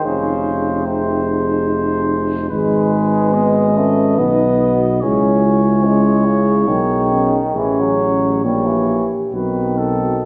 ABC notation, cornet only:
X:1
M:3/4
L:1/8
Q:1/4=72
K:Fm
V:1 name="Cornet"
c2 c4 | [K:C#m] B2 d2 d2 | c6 | c2 c z B A |]